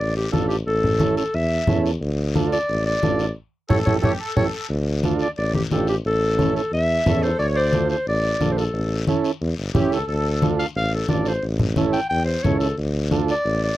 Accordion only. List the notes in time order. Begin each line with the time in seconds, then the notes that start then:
3.70 A4
4.03 G4
4.19 A4
4.36 A4
7.05 A4
7.39 C#5
7.55 D5
9.74 G4
9.91 A4
10.07 A4